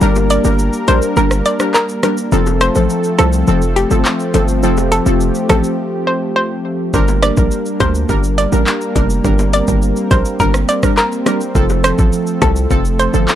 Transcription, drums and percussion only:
0.01 shaker
0.15 high bongo, shaker
0.30 closed hi-hat, shaker
0.44 shaker
0.59 shaker
0.73 shaker
0.88 closed hi-hat, high bongo, shaker
1.02 shaker
1.16 shaker
1.31 cross-stick, shaker
1.46 closed hi-hat, shaker
1.60 cross-stick, shaker
1.74 clap, shaker
1.89 shaker
2.03 cross-stick, closed hi-hat, high bongo, low bongo, shaker
2.17 shaker
2.32 shaker
2.46 high bongo, shaker
2.61 cross-stick, closed hi-hat, shaker
2.75 shaker
2.90 shaker
3.04 shaker
3.19 cross-stick, closed hi-hat, high bongo, shaker
3.33 shaker
3.47 shaker
3.62 shaker
3.76 closed hi-hat, shaker
3.91 shaker
4.05 clap, shaker
4.20 shaker
4.34 closed hi-hat, high bongo, low bongo, shaker
4.48 shaker
4.63 shaker
4.77 high bongo, shaker
4.92 closed hi-hat, shaker
5.06 shaker
5.21 shaker
5.35 shaker
5.49 cross-stick, closed hi-hat, high bongo, low bongo, shaker
5.64 shaker
6.94 kick, shaker
7.08 high bongo, shaker
7.23 cross-stick, closed hi-hat, shaker
7.37 kick, shaker
7.51 shaker
7.66 shaker
7.80 kick, cross-stick, closed hi-hat, high bongo, shaker
7.95 shaker
8.09 kick, shaker
8.24 shaker
8.38 closed hi-hat, shaker
8.52 shaker
8.67 clap, shaker
8.81 shaker
8.96 kick, closed hi-hat, high bongo, low bongo, shaker
9.10 shaker
9.25 kick, shaker
9.39 high bongo, shaker
9.53 closed hi-hat, shaker
9.68 kick, shaker
9.82 shaker
9.96 shaker
10.11 kick, closed hi-hat, high bongo, shaker
10.25 shaker
10.40 kick, shaker
10.54 cross-stick, shaker
10.69 closed hi-hat, shaker
10.83 kick, cross-stick, shaker
10.97 clap, shaker
11.12 shaker
11.26 cross-stick, closed hi-hat, high bongo, low bongo, shaker
11.41 shaker
11.55 kick, shaker
11.70 high bongo, shaker
11.84 cross-stick, closed hi-hat, shaker
11.98 kick, shaker
12.13 shaker
12.27 shaker
12.42 kick, cross-stick, closed hi-hat, high bongo, shaker
12.56 shaker
12.70 kick, shaker
12.85 shaker
12.99 closed hi-hat, shaker
13.14 shaker
13.28 clap, shaker

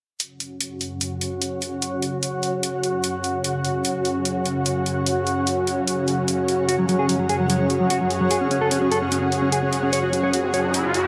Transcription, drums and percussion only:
0.20 closed hi-hat
0.40 closed hi-hat
0.61 closed hi-hat
0.81 closed hi-hat
1.01 closed hi-hat
1.21 closed hi-hat
1.42 closed hi-hat
1.62 closed hi-hat
1.82 closed hi-hat
2.02 closed hi-hat
2.23 closed hi-hat
2.43 closed hi-hat
2.63 closed hi-hat
2.83 closed hi-hat
3.04 closed hi-hat
3.24 closed hi-hat
3.44 closed hi-hat
3.65 closed hi-hat
3.85 closed hi-hat
4.05 closed hi-hat
4.25 closed hi-hat
4.46 closed hi-hat
4.66 closed hi-hat
4.86 closed hi-hat
5.06 closed hi-hat
5.27 closed hi-hat
5.47 closed hi-hat
5.67 closed hi-hat
5.88 closed hi-hat
6.08 closed hi-hat
6.28 closed hi-hat
6.48 closed hi-hat
6.69 closed hi-hat
6.89 closed hi-hat
7.09 closed hi-hat
7.29 closed hi-hat
7.50 closed hi-hat
7.70 closed hi-hat
7.90 closed hi-hat
8.10 closed hi-hat
8.31 closed hi-hat
8.51 closed hi-hat
8.71 closed hi-hat
8.92 closed hi-hat
9.12 closed hi-hat
9.32 closed hi-hat
9.52 closed hi-hat
9.73 closed hi-hat
9.93 closed hi-hat
10.13 closed hi-hat
10.33 closed hi-hat
10.54 closed hi-hat
10.74 closed hi-hat
10.94 closed hi-hat

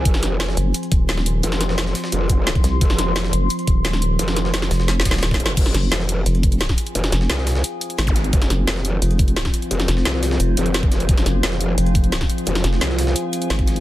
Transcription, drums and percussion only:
0.05 kick, closed hi-hat
0.14 snare
0.23 snare, closed hi-hat
0.40 snare, closed hi-hat, open hi-hat
0.49 snare
0.57 closed hi-hat
0.74 closed hi-hat
0.83 closed hi-hat
0.92 kick, closed hi-hat
1.09 snare, closed hi-hat
1.17 snare
1.26 closed hi-hat
1.43 closed hi-hat
1.52 snare
1.61 snare, closed hi-hat
1.69 snare
1.78 snare, closed hi-hat
1.86 snare
1.95 snare, closed hi-hat, open hi-hat
2.04 snare
2.12 closed hi-hat
2.30 kick, closed hi-hat
2.47 snare, closed hi-hat
2.55 kick, closed hi-hat
2.64 snare, closed hi-hat
2.81 kick, closed hi-hat
2.90 snare
2.99 snare, closed hi-hat
3.16 snare, closed hi-hat, open hi-hat
3.24 snare
3.33 closed hi-hat
3.50 closed hi-hat
3.59 closed hi-hat
3.67 kick, closed hi-hat
3.85 snare, closed hi-hat
3.93 snare
4.02 closed hi-hat
4.19 closed hi-hat
4.28 snare
4.36 snare, closed hi-hat
4.45 snare
4.54 snare, closed hi-hat
4.62 snare
4.71 snare, closed hi-hat, open hi-hat
4.80 snare
4.88 snare, closed hi-hat
5.00 snare
5.05 kick, snare, closed hi-hat, open hi-hat
5.11 snare
5.14 snare, open hi-hat
5.18 snare, open hi-hat
5.23 snare, closed hi-hat, open hi-hat
5.31 kick, snare
5.34 snare
5.40 closed hi-hat
5.46 snare
5.57 kick, closed hi-hat, crash
5.66 snare, closed hi-hat
5.74 snare, closed hi-hat
5.92 snare, closed hi-hat, open hi-hat
6.00 snare
6.09 closed hi-hat
6.26 closed hi-hat
6.35 closed hi-hat
6.43 kick, closed hi-hat
6.52 closed hi-hat
6.61 snare, closed hi-hat
6.69 kick, snare
6.78 closed hi-hat
6.87 closed hi-hat
6.95 closed hi-hat
7.04 snare, closed hi-hat
7.12 snare, closed hi-hat
7.21 snare
7.30 snare, closed hi-hat
7.38 snare
7.47 snare, closed hi-hat, open hi-hat
7.55 snare
7.64 closed hi-hat
7.81 closed hi-hat
7.90 closed hi-hat
7.99 snare, closed hi-hat
8.07 kick, closed hi-hat
8.16 snare, closed hi-hat
8.24 closed hi-hat
8.33 kick, closed hi-hat
8.42 snare, closed hi-hat
8.50 snare, closed hi-hat
8.67 snare, closed hi-hat, open hi-hat
8.76 snare
8.85 closed hi-hat
9.02 closed hi-hat
9.11 closed hi-hat
9.19 kick, closed hi-hat
9.28 closed hi-hat
9.36 snare, closed hi-hat
9.45 kick, snare
9.54 closed hi-hat
9.62 closed hi-hat
9.71 closed hi-hat
9.80 snare, closed hi-hat
9.88 snare, closed hi-hat
9.97 snare
10.05 snare, closed hi-hat
10.14 snare
10.23 snare, closed hi-hat, open hi-hat
10.31 snare
10.40 closed hi-hat
10.57 closed hi-hat
10.66 closed hi-hat
10.74 snare, closed hi-hat
10.83 kick, closed hi-hat
10.92 snare, closed hi-hat
11.00 closed hi-hat
11.09 kick, closed hi-hat
11.17 snare, closed hi-hat
11.26 snare, closed hi-hat
11.43 snare, closed hi-hat, open hi-hat
11.52 snare
11.61 closed hi-hat
11.78 closed hi-hat
11.86 closed hi-hat
11.95 kick, closed hi-hat
12.04 closed hi-hat
12.12 snare, closed hi-hat
12.21 kick, snare
12.29 closed hi-hat
12.38 closed hi-hat
12.47 closed hi-hat
12.55 snare, closed hi-hat
12.64 snare, closed hi-hat
12.73 snare
12.81 snare, closed hi-hat
12.90 snare
12.98 snare, closed hi-hat, open hi-hat
13.07 snare
13.16 closed hi-hat
13.33 closed hi-hat
13.42 closed hi-hat
13.50 snare, closed hi-hat
13.59 kick, closed hi-hat
13.67 snare, closed hi-hat
13.76 closed hi-hat

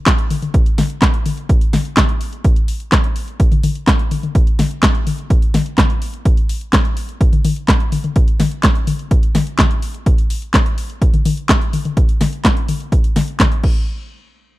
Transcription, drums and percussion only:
0.06 kick, snare, clap, closed hi-hat
0.18 closed hi-hat
0.30 open hi-hat, high tom
0.42 closed hi-hat, high tom
0.54 kick, closed hi-hat
0.66 closed hi-hat
0.78 snare, open hi-hat, high tom
0.90 closed hi-hat
1.02 kick, snare, clap, closed hi-hat
1.14 closed hi-hat
1.26 open hi-hat, high tom
1.37 closed hi-hat
1.49 kick, closed hi-hat
1.61 closed hi-hat
1.73 snare, open hi-hat, high tom
1.85 closed hi-hat
1.97 kick, snare, clap, closed hi-hat, high tom
2.09 closed hi-hat
2.21 open hi-hat
2.33 closed hi-hat
2.44 kick, closed hi-hat
2.56 closed hi-hat
2.68 open hi-hat
2.80 closed hi-hat
2.92 kick, snare, clap, closed hi-hat
3.04 closed hi-hat
3.16 open hi-hat
3.28 closed hi-hat
3.40 kick, closed hi-hat
3.52 closed hi-hat, high tom
3.63 open hi-hat, high tom
3.75 closed hi-hat
3.87 kick, snare, clap, closed hi-hat
3.99 closed hi-hat
4.11 open hi-hat, high tom
4.23 closed hi-hat, high tom
4.35 kick, closed hi-hat
4.47 closed hi-hat
4.59 snare, open hi-hat, high tom
4.71 closed hi-hat
4.83 kick, snare, clap, closed hi-hat
4.95 closed hi-hat
5.07 open hi-hat, high tom
5.19 closed hi-hat
5.30 kick, closed hi-hat
5.42 closed hi-hat
5.54 snare, open hi-hat, high tom
5.66 closed hi-hat
5.78 kick, snare, clap, closed hi-hat, high tom
5.90 closed hi-hat
6.02 open hi-hat
6.14 closed hi-hat
6.25 kick, closed hi-hat
6.37 closed hi-hat
6.49 open hi-hat
6.61 closed hi-hat
6.73 kick, snare, clap, closed hi-hat
6.85 closed hi-hat
6.97 open hi-hat
7.09 closed hi-hat
7.21 kick, closed hi-hat
7.33 closed hi-hat, high tom
7.45 open hi-hat, high tom
7.56 closed hi-hat
7.68 kick, snare, clap, closed hi-hat
7.80 closed hi-hat
7.92 open hi-hat, high tom
8.04 closed hi-hat, high tom
8.16 kick, closed hi-hat
8.28 closed hi-hat
8.40 snare, open hi-hat, high tom
8.51 closed hi-hat
8.63 kick, snare, clap, closed hi-hat
8.75 closed hi-hat
8.87 open hi-hat, high tom
8.99 closed hi-hat
9.11 kick, closed hi-hat
9.23 closed hi-hat
9.35 snare, open hi-hat, high tom
9.47 closed hi-hat
9.59 kick, snare, clap, closed hi-hat, high tom
9.71 closed hi-hat
9.82 open hi-hat
9.94 closed hi-hat
10.06 kick, closed hi-hat
10.18 closed hi-hat
10.30 open hi-hat
10.42 closed hi-hat
10.54 kick, snare, clap, closed hi-hat
10.66 closed hi-hat
10.78 open hi-hat
10.90 closed hi-hat
11.02 kick, closed hi-hat
11.14 closed hi-hat, high tom
11.25 open hi-hat, high tom
11.37 closed hi-hat
11.49 kick, snare, clap, closed hi-hat
11.61 closed hi-hat
11.73 open hi-hat, high tom
11.85 closed hi-hat, high tom
11.97 kick, closed hi-hat
12.09 closed hi-hat
12.21 snare, open hi-hat, high tom
12.33 closed hi-hat
12.44 kick, snare, clap, closed hi-hat
12.57 closed hi-hat
12.68 open hi-hat, high tom
12.80 closed hi-hat
12.92 kick, closed hi-hat
13.04 closed hi-hat
13.16 snare, open hi-hat, high tom
13.28 closed hi-hat
13.40 kick, snare, clap, closed hi-hat, high tom
13.52 closed hi-hat
13.64 kick, crash

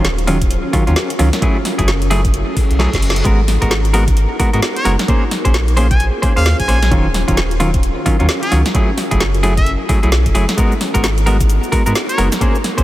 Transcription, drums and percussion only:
0.05 snare
0.18 closed hi-hat
0.28 open hi-hat
0.41 kick, closed hi-hat
0.51 closed hi-hat
0.73 kick, open hi-hat
0.87 closed hi-hat
0.96 snare
1.10 closed hi-hat
1.19 open hi-hat
1.33 snare, closed hi-hat
1.42 kick, closed hi-hat
1.65 snare, open hi-hat
1.79 kick, closed hi-hat
1.88 snare
2.02 closed hi-hat
2.11 open hi-hat
2.25 kick, closed hi-hat
2.34 closed hi-hat
2.57 kick, open hi-hat
2.71 closed hi-hat
2.80 snare
2.93 kick, snare, closed hi-hat
3.02 open hi-hat
3.10 snare
3.16 closed hi-hat
3.25 kick, closed hi-hat
3.48 snare, open hi-hat
3.62 kick, closed hi-hat
3.71 snare
3.85 closed hi-hat
3.94 open hi-hat
4.08 kick, closed hi-hat
4.17 closed hi-hat
4.40 kick, open hi-hat
4.54 closed hi-hat
4.62 snare
4.77 closed hi-hat
4.85 open hi-hat
4.99 snare, closed hi-hat
5.08 kick, closed hi-hat
5.31 snare, open hi-hat
5.45 kick, closed hi-hat
5.54 snare
5.68 closed hi-hat
5.77 open hi-hat
5.91 kick, closed hi-hat
6.00 closed hi-hat
6.23 kick, open hi-hat
6.37 closed hi-hat
6.46 snare
6.60 kick, closed hi-hat
6.69 open hi-hat
6.83 snare, closed hi-hat
6.92 kick, closed hi-hat
7.14 snare, open hi-hat
7.28 kick, closed hi-hat
7.37 snare
7.51 closed hi-hat
7.60 open hi-hat
7.74 kick, closed hi-hat
7.83 closed hi-hat
8.06 kick, open hi-hat
8.20 closed hi-hat
8.29 snare
8.43 closed hi-hat
8.52 open hi-hat
8.66 snare, closed hi-hat
8.75 kick, closed hi-hat
8.98 snare, open hi-hat
9.11 kick, closed hi-hat
9.20 snare
9.35 closed hi-hat
9.43 open hi-hat
9.57 kick, closed hi-hat
9.66 closed hi-hat
9.89 kick, open hi-hat
10.03 closed hi-hat
10.12 snare
10.26 kick, closed hi-hat
10.35 open hi-hat
10.49 snare, closed hi-hat
10.58 kick, closed hi-hat, shaker
10.72 shaker
10.81 snare, open hi-hat
10.95 kick, closed hi-hat, shaker
11.04 snare, shaker
11.18 closed hi-hat, shaker
11.27 open hi-hat
11.41 kick, closed hi-hat, shaker
11.50 closed hi-hat, shaker
11.63 shaker
11.72 kick, open hi-hat
11.86 closed hi-hat, shaker
11.95 snare, shaker
12.09 closed hi-hat, shaker
12.18 open hi-hat
12.32 snare, closed hi-hat, shaker
12.41 kick, closed hi-hat, shaker
12.55 shaker
12.64 snare, open hi-hat
12.78 kick, closed hi-hat, shaker

